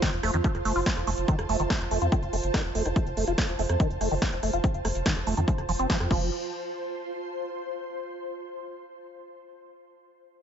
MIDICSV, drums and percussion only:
0, 0, Header, 1, 2, 480
1, 0, Start_track
1, 0, Key_signature, -1, "major"
1, 0, Tempo, 419580
1, 1467, Time_signature, 4, 2, 24, 8
1, 11923, End_track
2, 0, Start_track
2, 0, Title_t, "Drums"
2, 27, Note_on_c, 9, 36, 118
2, 27, Note_on_c, 9, 38, 116
2, 27, Note_on_c, 9, 42, 52
2, 141, Note_off_c, 9, 36, 0
2, 141, Note_off_c, 9, 38, 0
2, 141, Note_off_c, 9, 42, 0
2, 147, Note_on_c, 9, 42, 26
2, 261, Note_off_c, 9, 42, 0
2, 266, Note_on_c, 9, 37, 85
2, 266, Note_on_c, 9, 46, 107
2, 381, Note_off_c, 9, 37, 0
2, 381, Note_off_c, 9, 46, 0
2, 387, Note_on_c, 9, 42, 53
2, 501, Note_off_c, 9, 42, 0
2, 506, Note_on_c, 9, 42, 50
2, 507, Note_on_c, 9, 36, 122
2, 621, Note_off_c, 9, 36, 0
2, 621, Note_off_c, 9, 42, 0
2, 627, Note_on_c, 9, 37, 40
2, 627, Note_on_c, 9, 42, 25
2, 741, Note_off_c, 9, 37, 0
2, 741, Note_off_c, 9, 42, 0
2, 746, Note_on_c, 9, 46, 111
2, 861, Note_off_c, 9, 46, 0
2, 866, Note_on_c, 9, 46, 60
2, 981, Note_off_c, 9, 46, 0
2, 986, Note_on_c, 9, 38, 110
2, 987, Note_on_c, 9, 36, 113
2, 1101, Note_off_c, 9, 36, 0
2, 1101, Note_off_c, 9, 38, 0
2, 1107, Note_on_c, 9, 37, 40
2, 1107, Note_on_c, 9, 42, 26
2, 1221, Note_off_c, 9, 37, 0
2, 1221, Note_off_c, 9, 42, 0
2, 1226, Note_on_c, 9, 46, 108
2, 1341, Note_off_c, 9, 46, 0
2, 1347, Note_on_c, 9, 42, 50
2, 1461, Note_off_c, 9, 42, 0
2, 1467, Note_on_c, 9, 36, 109
2, 1467, Note_on_c, 9, 42, 53
2, 1581, Note_off_c, 9, 36, 0
2, 1581, Note_off_c, 9, 42, 0
2, 1587, Note_on_c, 9, 37, 83
2, 1587, Note_on_c, 9, 42, 28
2, 1701, Note_off_c, 9, 37, 0
2, 1701, Note_off_c, 9, 42, 0
2, 1707, Note_on_c, 9, 46, 105
2, 1821, Note_off_c, 9, 46, 0
2, 1827, Note_on_c, 9, 42, 52
2, 1941, Note_off_c, 9, 42, 0
2, 1947, Note_on_c, 9, 36, 120
2, 1947, Note_on_c, 9, 37, 42
2, 1947, Note_on_c, 9, 38, 119
2, 1947, Note_on_c, 9, 42, 51
2, 2061, Note_off_c, 9, 36, 0
2, 2061, Note_off_c, 9, 37, 0
2, 2061, Note_off_c, 9, 38, 0
2, 2061, Note_off_c, 9, 42, 0
2, 2067, Note_on_c, 9, 42, 27
2, 2181, Note_off_c, 9, 42, 0
2, 2186, Note_on_c, 9, 46, 107
2, 2301, Note_off_c, 9, 46, 0
2, 2306, Note_on_c, 9, 42, 55
2, 2421, Note_off_c, 9, 42, 0
2, 2427, Note_on_c, 9, 36, 122
2, 2427, Note_on_c, 9, 37, 40
2, 2427, Note_on_c, 9, 42, 54
2, 2541, Note_off_c, 9, 36, 0
2, 2541, Note_off_c, 9, 37, 0
2, 2541, Note_off_c, 9, 42, 0
2, 2547, Note_on_c, 9, 42, 27
2, 2661, Note_off_c, 9, 42, 0
2, 2667, Note_on_c, 9, 46, 104
2, 2781, Note_off_c, 9, 46, 0
2, 2787, Note_on_c, 9, 42, 51
2, 2901, Note_off_c, 9, 42, 0
2, 2907, Note_on_c, 9, 36, 113
2, 2907, Note_on_c, 9, 37, 78
2, 2907, Note_on_c, 9, 38, 105
2, 2907, Note_on_c, 9, 42, 49
2, 3021, Note_off_c, 9, 36, 0
2, 3021, Note_off_c, 9, 37, 0
2, 3021, Note_off_c, 9, 38, 0
2, 3021, Note_off_c, 9, 42, 0
2, 3027, Note_on_c, 9, 42, 26
2, 3141, Note_off_c, 9, 42, 0
2, 3147, Note_on_c, 9, 46, 106
2, 3261, Note_off_c, 9, 46, 0
2, 3267, Note_on_c, 9, 37, 45
2, 3267, Note_on_c, 9, 42, 53
2, 3381, Note_off_c, 9, 37, 0
2, 3381, Note_off_c, 9, 42, 0
2, 3387, Note_on_c, 9, 36, 113
2, 3387, Note_on_c, 9, 42, 54
2, 3501, Note_off_c, 9, 36, 0
2, 3501, Note_off_c, 9, 42, 0
2, 3507, Note_on_c, 9, 42, 29
2, 3621, Note_off_c, 9, 42, 0
2, 3627, Note_on_c, 9, 46, 104
2, 3741, Note_off_c, 9, 46, 0
2, 3747, Note_on_c, 9, 37, 43
2, 3747, Note_on_c, 9, 42, 55
2, 3861, Note_off_c, 9, 37, 0
2, 3861, Note_off_c, 9, 42, 0
2, 3866, Note_on_c, 9, 36, 111
2, 3867, Note_on_c, 9, 38, 118
2, 3867, Note_on_c, 9, 42, 55
2, 3981, Note_off_c, 9, 36, 0
2, 3981, Note_off_c, 9, 38, 0
2, 3981, Note_off_c, 9, 42, 0
2, 3987, Note_on_c, 9, 42, 29
2, 4101, Note_off_c, 9, 42, 0
2, 4107, Note_on_c, 9, 46, 97
2, 4221, Note_off_c, 9, 46, 0
2, 4227, Note_on_c, 9, 37, 84
2, 4227, Note_on_c, 9, 42, 58
2, 4341, Note_off_c, 9, 37, 0
2, 4341, Note_off_c, 9, 42, 0
2, 4346, Note_on_c, 9, 36, 114
2, 4347, Note_on_c, 9, 42, 53
2, 4461, Note_off_c, 9, 36, 0
2, 4461, Note_off_c, 9, 42, 0
2, 4467, Note_on_c, 9, 42, 27
2, 4581, Note_off_c, 9, 42, 0
2, 4586, Note_on_c, 9, 37, 42
2, 4586, Note_on_c, 9, 46, 102
2, 4701, Note_off_c, 9, 37, 0
2, 4701, Note_off_c, 9, 46, 0
2, 4707, Note_on_c, 9, 46, 54
2, 4821, Note_off_c, 9, 46, 0
2, 4826, Note_on_c, 9, 36, 116
2, 4827, Note_on_c, 9, 38, 109
2, 4827, Note_on_c, 9, 42, 52
2, 4941, Note_off_c, 9, 36, 0
2, 4941, Note_off_c, 9, 38, 0
2, 4941, Note_off_c, 9, 42, 0
2, 4947, Note_on_c, 9, 42, 27
2, 5061, Note_off_c, 9, 42, 0
2, 5067, Note_on_c, 9, 37, 41
2, 5067, Note_on_c, 9, 46, 104
2, 5181, Note_off_c, 9, 37, 0
2, 5181, Note_off_c, 9, 46, 0
2, 5187, Note_on_c, 9, 42, 56
2, 5301, Note_off_c, 9, 42, 0
2, 5306, Note_on_c, 9, 36, 113
2, 5307, Note_on_c, 9, 42, 58
2, 5421, Note_off_c, 9, 36, 0
2, 5421, Note_off_c, 9, 42, 0
2, 5426, Note_on_c, 9, 42, 28
2, 5541, Note_off_c, 9, 42, 0
2, 5547, Note_on_c, 9, 37, 76
2, 5547, Note_on_c, 9, 46, 101
2, 5661, Note_off_c, 9, 37, 0
2, 5661, Note_off_c, 9, 46, 0
2, 5667, Note_on_c, 9, 42, 56
2, 5781, Note_off_c, 9, 42, 0
2, 5786, Note_on_c, 9, 36, 120
2, 5787, Note_on_c, 9, 38, 124
2, 5787, Note_on_c, 9, 42, 58
2, 5901, Note_off_c, 9, 36, 0
2, 5901, Note_off_c, 9, 38, 0
2, 5901, Note_off_c, 9, 42, 0
2, 5907, Note_on_c, 9, 37, 41
2, 5907, Note_on_c, 9, 42, 28
2, 6021, Note_off_c, 9, 37, 0
2, 6021, Note_off_c, 9, 42, 0
2, 6027, Note_on_c, 9, 46, 104
2, 6141, Note_off_c, 9, 46, 0
2, 6147, Note_on_c, 9, 42, 59
2, 6261, Note_off_c, 9, 42, 0
2, 6266, Note_on_c, 9, 36, 116
2, 6267, Note_on_c, 9, 42, 56
2, 6381, Note_off_c, 9, 36, 0
2, 6381, Note_off_c, 9, 42, 0
2, 6387, Note_on_c, 9, 37, 38
2, 6387, Note_on_c, 9, 42, 28
2, 6501, Note_off_c, 9, 37, 0
2, 6501, Note_off_c, 9, 42, 0
2, 6507, Note_on_c, 9, 46, 107
2, 6621, Note_off_c, 9, 46, 0
2, 6627, Note_on_c, 9, 42, 54
2, 6741, Note_off_c, 9, 42, 0
2, 6746, Note_on_c, 9, 36, 117
2, 6747, Note_on_c, 9, 38, 116
2, 6747, Note_on_c, 9, 42, 52
2, 6861, Note_off_c, 9, 36, 0
2, 6861, Note_off_c, 9, 38, 0
2, 6861, Note_off_c, 9, 42, 0
2, 6867, Note_on_c, 9, 37, 77
2, 6867, Note_on_c, 9, 42, 27
2, 6981, Note_off_c, 9, 37, 0
2, 6981, Note_off_c, 9, 42, 0
2, 6986, Note_on_c, 9, 36, 120
2, 6987, Note_on_c, 9, 49, 88
2, 7101, Note_off_c, 9, 36, 0
2, 7101, Note_off_c, 9, 49, 0
2, 11923, End_track
0, 0, End_of_file